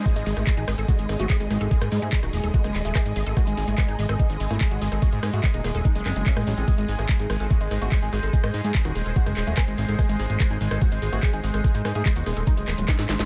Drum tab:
HH |xxoxxxoxxxoxxxox|xxoxxxoxxxoxxxox|xxoxxxoxxxoxxxox|xxoxxxoxxxoxxxox|
CP |----x-------x---|----x-----x-x---|----x-------x---|----x-----x-x---|
SD |---r--r---r---r-|-r---r---r--r---|r---r--r---r---r|--r---r---r--r--|
BD |o---o---o---o---|o---o---o---o---|o---o---o---o---|o---o---o---o---|

HH |xxoxxxoxxxoxxxox|xxoxxxoxxxoxxxox|xxoxxxoxxxoxxxox|xxoxxxoxxxoxxxox|
CP |----x-------x---|----x-----x-x---|----x-------x---|----x-----x-x---|
SD |---r--r---r---r-|-r---r---r--r---|r---r--r---r---r|--r---r---r-oooo|
BD |o---o---o---o---|o---o---o---o---|o---o---o---o---|o---o---o---o---|